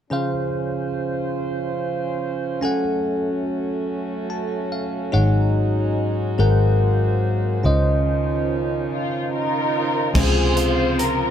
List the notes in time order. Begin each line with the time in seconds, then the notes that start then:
0.10 C#3 F3 C#4 F4 G#4 C5 F5
2.61 F#3 A3 C#4 F#4 A4 F#5 G#5
4.30 A5
4.72 F5
5.12 G#1 G#2 G#3 D#4 F#4 G#4 C#5 F#5
6.38 G#1 G#2 A#3 C4 G#4 A#4 C5 F#5
7.63 C#2 C#3 D#3 F3 C#4 D#4 F4 C5 D#5
8.92 F4
9.32 D#4 F4 A#4
10.13 C#2 C3 C#3 F3 C4 F4 G#4 C5, kick, crash
10.17 C4 F4
10.23 C5
10.57 C5, closed hi-hat
10.99 A#4, closed hi-hat